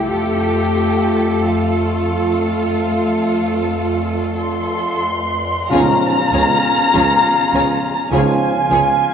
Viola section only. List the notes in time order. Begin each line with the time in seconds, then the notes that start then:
0.07 A3 F4
1.44 A3 F4
5.71 F3 F4
6.33 F3 F4
6.94 F3 F4
7.53 F3 F4
8.12 F3 F4
8.70 F3 F4